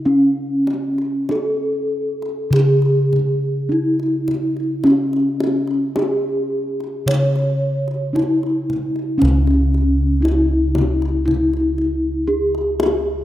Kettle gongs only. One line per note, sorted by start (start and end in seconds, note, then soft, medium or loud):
0.00 1.25 C#3 medium
0.06 3.65 C#4 medium
1.30 1.38 D4 soft
2.51 5.92 C#3 medium
3.69 3.77 D4 medium
4.84 8.09 C#4 medium
5.97 6.05 D4 soft
7.06 10.17 C#3 medium
8.13 8.21 D4 soft
9.18 12.24 C#4 medium
9.23 13.24 C#2 loud
10.21 10.29 D4 soft
12.28 12.36 D4 soft